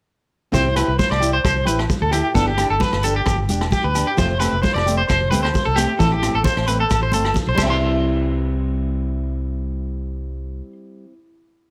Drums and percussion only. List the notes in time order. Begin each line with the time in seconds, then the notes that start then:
0.54 kick, shekere
0.76 cross-stick, closed hi-hat, low agogo, shekere
0.99 kick, high conga, shekere
1.12 cross-stick, low agogo
1.22 closed hi-hat, shekere
1.44 kick, cross-stick, muted conga, low agogo, shekere
1.67 closed hi-hat, muted conga, high conga, shekere
1.79 cross-stick, low agogo
1.90 kick, high conga, shekere
2.12 cross-stick, closed hi-hat, low agogo, shekere
2.35 kick, muted conga, shekere
2.58 cross-stick, closed hi-hat, low agogo, shekere
2.80 kick, high conga, low conga, shekere
2.93 cross-stick, low agogo
3.03 closed hi-hat, shekere
3.26 kick, cross-stick, muted conga, low agogo, shekere
3.49 closed hi-hat, muted conga, high conga, shekere
3.61 cross-stick, low agogo
3.71 kick, high conga, shekere
3.94 closed hi-hat, muted conga, low agogo, shekere
4.17 kick, muted conga, shekere
4.41 cross-stick, closed hi-hat, low agogo, shekere
4.63 kick, high conga, shekere
4.76 cross-stick, low agogo
4.87 closed hi-hat, shekere
5.09 kick, cross-stick, muted conga, low agogo, shekere
5.32 closed hi-hat, muted conga, high conga, shekere
5.45 cross-stick, low agogo
5.54 kick, high conga, shekere
5.77 cross-stick, closed hi-hat, muted conga, low agogo, shekere
6.00 kick, muted conga, shekere
6.23 cross-stick, closed hi-hat, low agogo, shekere
6.44 kick, high conga, low conga, shekere
6.57 cross-stick, low agogo
6.67 closed hi-hat, shekere
6.90 kick, cross-stick, muted conga, low agogo, shekere
7.12 closed hi-hat, muted conga, high conga, shekere
7.25 cross-stick, low agogo
7.34 kick, high conga, shekere
7.58 kick, crash, muted conga, low agogo, shekere